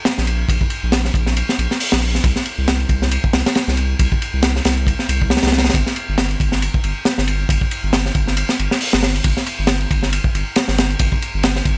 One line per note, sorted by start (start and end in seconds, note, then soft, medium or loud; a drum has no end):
0.05 snare loud
0.05 ride medium
0.18 0.45 A#1 loud
0.18 snare soft
0.27 ride medium
0.49 0.57 A#1 loud
0.49 kick loud
0.49 ride medium
0.61 kick loud
0.70 ride medium
0.83 1.10 A#1 medium
0.92 snare loud
0.92 ride medium
1.05 snare soft
1.14 1.43 A#1 medium
1.14 kick loud
1.14 ride medium
1.26 snare soft
1.37 ride medium
1.49 snare medium
1.58 1.67 A#1 medium
1.58 ride medium
1.71 snare soft
1.80 open hi-hat medium
1.92 2.20 A#1 loud
1.92 snare loud
2.02 ride medium
2.15 snare soft
2.24 2.33 C2 loud
2.24 kick loud
2.24 ride medium
2.36 snare soft
2.45 ride medium
2.58 2.85 C2 medium
2.68 snare loud
2.68 ride medium
2.80 ride soft
2.89 3.18 C2 medium
2.89 kick medium
2.89 ride medium
3.02 snare soft
3.11 ride medium
3.24 kick loud
3.33 3.42 C2 medium
3.33 snare loud
3.33 ride medium
3.46 snare loud
3.46 ride medium
3.55 snare loud
3.55 ride medium
3.68 3.95 C2 loud
3.68 snare medium
3.77 ride medium
3.99 4.08 C2 loud
3.99 kick loud
3.99 ride loud
4.12 kick loud
4.22 ride medium
4.33 4.60 C2 medium
4.43 snare loud
4.43 ride medium
4.56 snare soft
4.65 4.93 C2 medium
4.65 snare medium
4.65 ride medium
4.77 ride soft
4.87 kick medium
4.87 ride medium
4.99 snare soft
5.09 5.37 C2 medium
5.09 ride medium
5.22 kick medium
5.30 snare medium
5.30 ride medium
5.37 snare medium
5.37 ride medium
5.43 5.70 C2 medium
5.43 snare medium
5.43 ride medium
5.47 snare medium
5.47 ride medium
5.52 snare medium
5.52 ride medium
5.58 snare medium
5.58 ride medium
5.64 snare medium
5.64 ride medium
5.69 snare medium
5.69 ride medium
5.74 5.83 G1 loud
5.74 kick loud
5.74 ride medium
5.86 snare soft
5.96 ride medium
6.09 6.36 G1 medium
6.18 snare loud
6.18 ride medium
6.31 ride soft
6.40 6.69 G1 medium
6.40 kick loud
6.40 ride medium
6.52 snare soft
6.62 ride medium
6.74 kick medium
6.84 6.93 G1 medium
6.84 ride medium
7.05 snare loud
7.05 ride medium
7.18 7.45 G1 loud
7.18 snare medium
7.27 ride medium
7.49 7.58 G1 loud
7.49 kick loud
7.49 ride loud
7.61 kick medium
7.71 ride medium
7.83 8.11 G1 medium
7.93 snare loud
7.93 ride loud
8.06 snare soft
8.15 8.44 G1 medium
8.15 kick medium
8.15 ride medium
8.27 snare soft
8.37 ride medium
8.49 snare medium
8.59 8.68 G1 medium
8.59 ride medium
8.71 snare medium
8.81 open hi-hat medium
8.93 9.20 G1 loud
8.93 snare loud
9.03 snare loud
9.15 ride medium
9.24 9.33 G1 loud
9.24 kick loud
9.24 ride medium
9.37 snare soft
9.46 ride medium
9.59 9.86 G1 medium
9.67 snare loud
9.67 ride medium
9.81 ride soft
9.91 10.19 G1 medium
9.91 kick medium
9.91 ride medium
10.03 snare soft
10.13 ride medium
10.24 kick medium
10.34 10.43 G1 medium
10.34 ride medium
10.56 snare loud
10.56 ride medium
10.68 10.95 G1 loud
10.68 snare medium
10.78 snare loud
10.78 ride medium
10.90 ride soft
10.99 11.09 G1 loud
10.99 kick loud
10.99 ride medium
11.12 kick medium
11.22 ride medium
11.34 11.61 G1 medium
11.43 snare loud
11.43 ride medium
11.56 snare soft
11.65 11.78 G1 medium
11.65 kick medium
11.65 ride medium